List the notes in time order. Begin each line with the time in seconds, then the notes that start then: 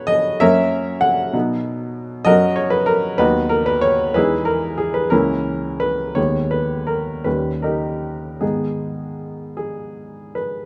Already playing: B2 F#3 B3 D#4 B4 C#5
0.07 D#5
0.40 F#2 F#3 A#3 C#4 A#4 C#5 E5
1.01 F#5
1.33 B2 F#3 B3 D#4
2.25 F#2 F#3 C#4 F#4 A#4 D#5
2.56 C#5
2.70 B4
2.86 A#4
3.18 D#2 F#3 B3 D#4 F#4 B4
3.49 A#4
3.66 B4
3.81 C#5
4.14 E2 E3 G#3 D#4 E4 G#4 B4
4.45 A#4
4.78 G#4
4.94 B4
5.10 C#2 E3 A#3 C#4 E4 A#4
5.80 B4
6.15 D#2 D#3 G#3 B3 C#5
6.51 B4
6.87 A#4
7.24 D#2 D#3 G3 C#4 B4
7.62 D#4 G4 A#4
8.41 G#2 D#3 G#3 B3 D#4 G#4
9.57 G#4
10.35 B4